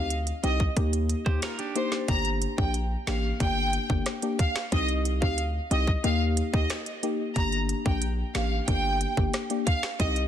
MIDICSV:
0, 0, Header, 1, 6, 480
1, 0, Start_track
1, 0, Key_signature, -2, "minor"
1, 0, Tempo, 659341
1, 1518, Time_signature, 4, 2, 24, 8
1, 7482, End_track
2, 0, Start_track
2, 0, Title_t, "Violin section"
2, 0, Program_c, 0, 48
2, 317, Note_on_c, 0, 75, 87
2, 415, Note_off_c, 0, 75, 0
2, 1277, Note_on_c, 0, 72, 85
2, 1375, Note_off_c, 0, 72, 0
2, 1517, Note_on_c, 0, 82, 106
2, 1614, Note_off_c, 0, 82, 0
2, 1877, Note_on_c, 0, 79, 73
2, 1974, Note_off_c, 0, 79, 0
2, 2237, Note_on_c, 0, 77, 76
2, 2334, Note_off_c, 0, 77, 0
2, 2478, Note_on_c, 0, 79, 113
2, 2816, Note_off_c, 0, 79, 0
2, 3197, Note_on_c, 0, 77, 84
2, 3295, Note_off_c, 0, 77, 0
2, 3438, Note_on_c, 0, 75, 100
2, 3535, Note_off_c, 0, 75, 0
2, 3798, Note_on_c, 0, 77, 78
2, 3895, Note_off_c, 0, 77, 0
2, 4158, Note_on_c, 0, 75, 83
2, 4255, Note_off_c, 0, 75, 0
2, 4398, Note_on_c, 0, 77, 86
2, 4495, Note_off_c, 0, 77, 0
2, 4758, Note_on_c, 0, 75, 76
2, 4855, Note_off_c, 0, 75, 0
2, 5358, Note_on_c, 0, 82, 101
2, 5455, Note_off_c, 0, 82, 0
2, 5719, Note_on_c, 0, 79, 80
2, 5816, Note_off_c, 0, 79, 0
2, 6078, Note_on_c, 0, 77, 89
2, 6175, Note_off_c, 0, 77, 0
2, 6318, Note_on_c, 0, 79, 103
2, 6656, Note_off_c, 0, 79, 0
2, 7038, Note_on_c, 0, 77, 89
2, 7135, Note_off_c, 0, 77, 0
2, 7278, Note_on_c, 0, 75, 100
2, 7375, Note_off_c, 0, 75, 0
2, 7482, End_track
3, 0, Start_track
3, 0, Title_t, "Clean electric guitar"
3, 0, Program_c, 1, 27
3, 918, Note_on_c, 1, 72, 82
3, 922, Note_on_c, 1, 67, 68
3, 1032, Note_off_c, 1, 72, 0
3, 1034, Note_off_c, 1, 67, 0
3, 1038, Note_on_c, 1, 70, 80
3, 1042, Note_on_c, 1, 65, 71
3, 1152, Note_off_c, 1, 70, 0
3, 1154, Note_off_c, 1, 65, 0
3, 1158, Note_on_c, 1, 67, 76
3, 1162, Note_on_c, 1, 62, 69
3, 1500, Note_off_c, 1, 67, 0
3, 1502, Note_off_c, 1, 62, 0
3, 7482, End_track
4, 0, Start_track
4, 0, Title_t, "Synth pluck"
4, 0, Program_c, 2, 84
4, 0, Note_on_c, 2, 60, 79
4, 0, Note_on_c, 2, 63, 69
4, 0, Note_on_c, 2, 67, 86
4, 95, Note_off_c, 2, 60, 0
4, 96, Note_off_c, 2, 63, 0
4, 97, Note_off_c, 2, 67, 0
4, 315, Note_on_c, 2, 60, 81
4, 318, Note_on_c, 2, 63, 76
4, 320, Note_on_c, 2, 67, 87
4, 454, Note_off_c, 2, 60, 0
4, 456, Note_off_c, 2, 63, 0
4, 457, Note_off_c, 2, 67, 0
4, 555, Note_on_c, 2, 58, 91
4, 557, Note_on_c, 2, 63, 84
4, 560, Note_on_c, 2, 67, 104
4, 888, Note_off_c, 2, 58, 0
4, 889, Note_off_c, 2, 63, 0
4, 890, Note_off_c, 2, 67, 0
4, 916, Note_on_c, 2, 58, 75
4, 917, Note_on_c, 2, 63, 72
4, 920, Note_on_c, 2, 67, 84
4, 1055, Note_off_c, 2, 58, 0
4, 1056, Note_off_c, 2, 63, 0
4, 1057, Note_off_c, 2, 67, 0
4, 1276, Note_on_c, 2, 58, 77
4, 1278, Note_on_c, 2, 63, 72
4, 1280, Note_on_c, 2, 67, 87
4, 1415, Note_off_c, 2, 58, 0
4, 1416, Note_off_c, 2, 63, 0
4, 1417, Note_off_c, 2, 67, 0
4, 1515, Note_on_c, 2, 58, 100
4, 1517, Note_on_c, 2, 62, 92
4, 1520, Note_on_c, 2, 67, 106
4, 1848, Note_off_c, 2, 58, 0
4, 1849, Note_off_c, 2, 62, 0
4, 1850, Note_off_c, 2, 67, 0
4, 1875, Note_on_c, 2, 58, 76
4, 1877, Note_on_c, 2, 62, 67
4, 1879, Note_on_c, 2, 67, 84
4, 2014, Note_off_c, 2, 58, 0
4, 2015, Note_off_c, 2, 62, 0
4, 2016, Note_off_c, 2, 67, 0
4, 2236, Note_on_c, 2, 58, 79
4, 2237, Note_on_c, 2, 62, 70
4, 2239, Note_on_c, 2, 67, 88
4, 2375, Note_off_c, 2, 58, 0
4, 2375, Note_off_c, 2, 62, 0
4, 2376, Note_off_c, 2, 67, 0
4, 2475, Note_on_c, 2, 58, 96
4, 2478, Note_on_c, 2, 62, 91
4, 2480, Note_on_c, 2, 67, 108
4, 2807, Note_off_c, 2, 58, 0
4, 2809, Note_off_c, 2, 62, 0
4, 2810, Note_off_c, 2, 67, 0
4, 2835, Note_on_c, 2, 58, 80
4, 2838, Note_on_c, 2, 62, 71
4, 2840, Note_on_c, 2, 67, 84
4, 2974, Note_off_c, 2, 58, 0
4, 2976, Note_off_c, 2, 62, 0
4, 2977, Note_off_c, 2, 67, 0
4, 3076, Note_on_c, 2, 58, 80
4, 3077, Note_on_c, 2, 62, 77
4, 3080, Note_on_c, 2, 67, 89
4, 3215, Note_off_c, 2, 58, 0
4, 3215, Note_off_c, 2, 62, 0
4, 3217, Note_off_c, 2, 67, 0
4, 3436, Note_on_c, 2, 60, 101
4, 3438, Note_on_c, 2, 63, 90
4, 3440, Note_on_c, 2, 67, 102
4, 3768, Note_off_c, 2, 60, 0
4, 3769, Note_off_c, 2, 63, 0
4, 3770, Note_off_c, 2, 67, 0
4, 3795, Note_on_c, 2, 60, 76
4, 3797, Note_on_c, 2, 63, 72
4, 3799, Note_on_c, 2, 67, 84
4, 3934, Note_off_c, 2, 60, 0
4, 3935, Note_off_c, 2, 63, 0
4, 3936, Note_off_c, 2, 67, 0
4, 4155, Note_on_c, 2, 60, 78
4, 4157, Note_on_c, 2, 63, 75
4, 4160, Note_on_c, 2, 67, 89
4, 4294, Note_off_c, 2, 60, 0
4, 4295, Note_off_c, 2, 63, 0
4, 4297, Note_off_c, 2, 67, 0
4, 4396, Note_on_c, 2, 58, 97
4, 4398, Note_on_c, 2, 63, 88
4, 4400, Note_on_c, 2, 67, 105
4, 4728, Note_off_c, 2, 58, 0
4, 4729, Note_off_c, 2, 63, 0
4, 4730, Note_off_c, 2, 67, 0
4, 4756, Note_on_c, 2, 58, 79
4, 4758, Note_on_c, 2, 63, 72
4, 4760, Note_on_c, 2, 67, 89
4, 4895, Note_off_c, 2, 58, 0
4, 4896, Note_off_c, 2, 63, 0
4, 4897, Note_off_c, 2, 67, 0
4, 5116, Note_on_c, 2, 58, 79
4, 5118, Note_on_c, 2, 63, 69
4, 5120, Note_on_c, 2, 67, 85
4, 5255, Note_off_c, 2, 58, 0
4, 5256, Note_off_c, 2, 63, 0
4, 5257, Note_off_c, 2, 67, 0
4, 5356, Note_on_c, 2, 58, 95
4, 5359, Note_on_c, 2, 62, 90
4, 5361, Note_on_c, 2, 67, 108
4, 5688, Note_off_c, 2, 58, 0
4, 5689, Note_off_c, 2, 62, 0
4, 5690, Note_off_c, 2, 67, 0
4, 5716, Note_on_c, 2, 58, 77
4, 5719, Note_on_c, 2, 62, 68
4, 5720, Note_on_c, 2, 67, 88
4, 5855, Note_off_c, 2, 58, 0
4, 5856, Note_off_c, 2, 62, 0
4, 5857, Note_off_c, 2, 67, 0
4, 6076, Note_on_c, 2, 58, 81
4, 6078, Note_on_c, 2, 62, 72
4, 6080, Note_on_c, 2, 67, 90
4, 6215, Note_off_c, 2, 58, 0
4, 6216, Note_off_c, 2, 62, 0
4, 6217, Note_off_c, 2, 67, 0
4, 6316, Note_on_c, 2, 58, 99
4, 6318, Note_on_c, 2, 62, 86
4, 6320, Note_on_c, 2, 67, 101
4, 6648, Note_off_c, 2, 58, 0
4, 6649, Note_off_c, 2, 62, 0
4, 6650, Note_off_c, 2, 67, 0
4, 6676, Note_on_c, 2, 58, 79
4, 6678, Note_on_c, 2, 62, 70
4, 6680, Note_on_c, 2, 67, 84
4, 6815, Note_off_c, 2, 58, 0
4, 6816, Note_off_c, 2, 62, 0
4, 6817, Note_off_c, 2, 67, 0
4, 6916, Note_on_c, 2, 58, 76
4, 6918, Note_on_c, 2, 62, 72
4, 6921, Note_on_c, 2, 67, 85
4, 7055, Note_off_c, 2, 58, 0
4, 7056, Note_off_c, 2, 62, 0
4, 7057, Note_off_c, 2, 67, 0
4, 7277, Note_on_c, 2, 60, 93
4, 7279, Note_on_c, 2, 63, 88
4, 7281, Note_on_c, 2, 67, 110
4, 7482, Note_off_c, 2, 60, 0
4, 7482, Note_off_c, 2, 63, 0
4, 7482, Note_off_c, 2, 67, 0
4, 7482, End_track
5, 0, Start_track
5, 0, Title_t, "808-style bass"
5, 0, Program_c, 3, 38
5, 0, Note_on_c, 3, 38, 90
5, 235, Note_off_c, 3, 38, 0
5, 317, Note_on_c, 3, 36, 95
5, 501, Note_off_c, 3, 36, 0
5, 558, Note_on_c, 3, 39, 99
5, 834, Note_off_c, 3, 39, 0
5, 917, Note_on_c, 3, 39, 92
5, 1010, Note_off_c, 3, 39, 0
5, 1518, Note_on_c, 3, 31, 104
5, 1793, Note_off_c, 3, 31, 0
5, 1880, Note_on_c, 3, 34, 85
5, 2155, Note_off_c, 3, 34, 0
5, 2237, Note_on_c, 3, 33, 96
5, 2421, Note_off_c, 3, 33, 0
5, 2477, Note_on_c, 3, 31, 109
5, 2753, Note_off_c, 3, 31, 0
5, 2837, Note_on_c, 3, 31, 102
5, 2929, Note_off_c, 3, 31, 0
5, 3437, Note_on_c, 3, 36, 109
5, 3799, Note_on_c, 3, 38, 93
5, 3810, Note_off_c, 3, 36, 0
5, 4075, Note_off_c, 3, 38, 0
5, 4157, Note_on_c, 3, 36, 94
5, 4341, Note_off_c, 3, 36, 0
5, 4397, Note_on_c, 3, 39, 104
5, 4673, Note_off_c, 3, 39, 0
5, 4758, Note_on_c, 3, 39, 97
5, 4850, Note_off_c, 3, 39, 0
5, 5358, Note_on_c, 3, 31, 107
5, 5634, Note_off_c, 3, 31, 0
5, 5720, Note_on_c, 3, 34, 85
5, 5995, Note_off_c, 3, 34, 0
5, 6078, Note_on_c, 3, 33, 94
5, 6262, Note_off_c, 3, 33, 0
5, 6318, Note_on_c, 3, 31, 110
5, 6594, Note_off_c, 3, 31, 0
5, 6678, Note_on_c, 3, 31, 97
5, 6770, Note_off_c, 3, 31, 0
5, 7278, Note_on_c, 3, 36, 109
5, 7482, Note_off_c, 3, 36, 0
5, 7482, End_track
6, 0, Start_track
6, 0, Title_t, "Drums"
6, 76, Note_on_c, 9, 42, 83
6, 149, Note_off_c, 9, 42, 0
6, 195, Note_on_c, 9, 42, 66
6, 268, Note_off_c, 9, 42, 0
6, 317, Note_on_c, 9, 42, 66
6, 390, Note_off_c, 9, 42, 0
6, 436, Note_on_c, 9, 36, 90
6, 509, Note_off_c, 9, 36, 0
6, 557, Note_on_c, 9, 42, 84
6, 558, Note_on_c, 9, 36, 99
6, 630, Note_off_c, 9, 36, 0
6, 630, Note_off_c, 9, 42, 0
6, 678, Note_on_c, 9, 42, 62
6, 751, Note_off_c, 9, 42, 0
6, 797, Note_on_c, 9, 42, 84
6, 870, Note_off_c, 9, 42, 0
6, 917, Note_on_c, 9, 36, 88
6, 990, Note_off_c, 9, 36, 0
6, 1036, Note_on_c, 9, 42, 80
6, 1039, Note_on_c, 9, 37, 105
6, 1039, Note_on_c, 9, 38, 127
6, 1040, Note_on_c, 9, 26, 99
6, 1108, Note_off_c, 9, 42, 0
6, 1112, Note_off_c, 9, 37, 0
6, 1112, Note_off_c, 9, 38, 0
6, 1113, Note_off_c, 9, 26, 0
6, 1156, Note_on_c, 9, 42, 55
6, 1228, Note_off_c, 9, 42, 0
6, 1278, Note_on_c, 9, 42, 74
6, 1351, Note_off_c, 9, 42, 0
6, 1396, Note_on_c, 9, 38, 72
6, 1469, Note_off_c, 9, 38, 0
6, 1517, Note_on_c, 9, 36, 116
6, 1517, Note_on_c, 9, 42, 64
6, 1590, Note_off_c, 9, 36, 0
6, 1590, Note_off_c, 9, 42, 0
6, 1637, Note_on_c, 9, 42, 52
6, 1709, Note_off_c, 9, 42, 0
6, 1759, Note_on_c, 9, 42, 71
6, 1832, Note_off_c, 9, 42, 0
6, 1879, Note_on_c, 9, 36, 100
6, 1952, Note_off_c, 9, 36, 0
6, 1996, Note_on_c, 9, 42, 79
6, 2068, Note_off_c, 9, 42, 0
6, 2237, Note_on_c, 9, 38, 120
6, 2237, Note_on_c, 9, 42, 65
6, 2238, Note_on_c, 9, 26, 102
6, 2310, Note_off_c, 9, 38, 0
6, 2310, Note_off_c, 9, 42, 0
6, 2311, Note_off_c, 9, 26, 0
6, 2477, Note_on_c, 9, 36, 103
6, 2477, Note_on_c, 9, 42, 84
6, 2550, Note_off_c, 9, 36, 0
6, 2550, Note_off_c, 9, 42, 0
6, 2716, Note_on_c, 9, 42, 88
6, 2789, Note_off_c, 9, 42, 0
6, 2837, Note_on_c, 9, 36, 92
6, 2910, Note_off_c, 9, 36, 0
6, 2955, Note_on_c, 9, 42, 76
6, 2958, Note_on_c, 9, 37, 107
6, 2958, Note_on_c, 9, 38, 76
6, 3027, Note_off_c, 9, 42, 0
6, 3031, Note_off_c, 9, 37, 0
6, 3031, Note_off_c, 9, 38, 0
6, 3075, Note_on_c, 9, 42, 58
6, 3148, Note_off_c, 9, 42, 0
6, 3197, Note_on_c, 9, 36, 100
6, 3198, Note_on_c, 9, 42, 76
6, 3270, Note_off_c, 9, 36, 0
6, 3271, Note_off_c, 9, 42, 0
6, 3317, Note_on_c, 9, 38, 118
6, 3318, Note_on_c, 9, 26, 99
6, 3389, Note_off_c, 9, 38, 0
6, 3391, Note_off_c, 9, 26, 0
6, 3437, Note_on_c, 9, 36, 119
6, 3437, Note_on_c, 9, 42, 66
6, 3510, Note_off_c, 9, 36, 0
6, 3510, Note_off_c, 9, 42, 0
6, 3557, Note_on_c, 9, 42, 53
6, 3629, Note_off_c, 9, 42, 0
6, 3679, Note_on_c, 9, 42, 70
6, 3752, Note_off_c, 9, 42, 0
6, 3799, Note_on_c, 9, 36, 105
6, 3872, Note_off_c, 9, 36, 0
6, 3916, Note_on_c, 9, 42, 84
6, 3988, Note_off_c, 9, 42, 0
6, 4158, Note_on_c, 9, 42, 64
6, 4231, Note_off_c, 9, 42, 0
6, 4277, Note_on_c, 9, 36, 88
6, 4349, Note_off_c, 9, 36, 0
6, 4398, Note_on_c, 9, 42, 85
6, 4470, Note_off_c, 9, 42, 0
6, 4638, Note_on_c, 9, 42, 84
6, 4711, Note_off_c, 9, 42, 0
6, 4758, Note_on_c, 9, 36, 94
6, 4831, Note_off_c, 9, 36, 0
6, 4876, Note_on_c, 9, 42, 78
6, 4879, Note_on_c, 9, 37, 103
6, 4879, Note_on_c, 9, 38, 127
6, 4881, Note_on_c, 9, 26, 101
6, 4949, Note_off_c, 9, 42, 0
6, 4952, Note_off_c, 9, 37, 0
6, 4952, Note_off_c, 9, 38, 0
6, 4953, Note_off_c, 9, 26, 0
6, 4996, Note_on_c, 9, 42, 56
6, 5069, Note_off_c, 9, 42, 0
6, 5119, Note_on_c, 9, 42, 72
6, 5192, Note_off_c, 9, 42, 0
6, 5357, Note_on_c, 9, 42, 66
6, 5358, Note_on_c, 9, 36, 116
6, 5430, Note_off_c, 9, 42, 0
6, 5431, Note_off_c, 9, 36, 0
6, 5477, Note_on_c, 9, 42, 50
6, 5550, Note_off_c, 9, 42, 0
6, 5599, Note_on_c, 9, 42, 70
6, 5672, Note_off_c, 9, 42, 0
6, 5720, Note_on_c, 9, 36, 107
6, 5793, Note_off_c, 9, 36, 0
6, 5836, Note_on_c, 9, 42, 81
6, 5909, Note_off_c, 9, 42, 0
6, 6078, Note_on_c, 9, 38, 124
6, 6078, Note_on_c, 9, 42, 66
6, 6079, Note_on_c, 9, 26, 101
6, 6150, Note_off_c, 9, 42, 0
6, 6151, Note_off_c, 9, 38, 0
6, 6152, Note_off_c, 9, 26, 0
6, 6318, Note_on_c, 9, 36, 101
6, 6318, Note_on_c, 9, 42, 83
6, 6390, Note_off_c, 9, 42, 0
6, 6391, Note_off_c, 9, 36, 0
6, 6558, Note_on_c, 9, 42, 86
6, 6630, Note_off_c, 9, 42, 0
6, 6678, Note_on_c, 9, 36, 91
6, 6751, Note_off_c, 9, 36, 0
6, 6796, Note_on_c, 9, 42, 75
6, 6799, Note_on_c, 9, 37, 104
6, 6799, Note_on_c, 9, 38, 75
6, 6869, Note_off_c, 9, 42, 0
6, 6872, Note_off_c, 9, 37, 0
6, 6872, Note_off_c, 9, 38, 0
6, 6916, Note_on_c, 9, 42, 56
6, 6989, Note_off_c, 9, 42, 0
6, 7038, Note_on_c, 9, 36, 98
6, 7038, Note_on_c, 9, 42, 76
6, 7111, Note_off_c, 9, 36, 0
6, 7111, Note_off_c, 9, 42, 0
6, 7157, Note_on_c, 9, 38, 117
6, 7158, Note_on_c, 9, 26, 91
6, 7230, Note_off_c, 9, 38, 0
6, 7231, Note_off_c, 9, 26, 0
6, 7277, Note_on_c, 9, 42, 68
6, 7278, Note_on_c, 9, 36, 120
6, 7350, Note_off_c, 9, 42, 0
6, 7351, Note_off_c, 9, 36, 0
6, 7397, Note_on_c, 9, 42, 50
6, 7470, Note_off_c, 9, 42, 0
6, 7482, End_track
0, 0, End_of_file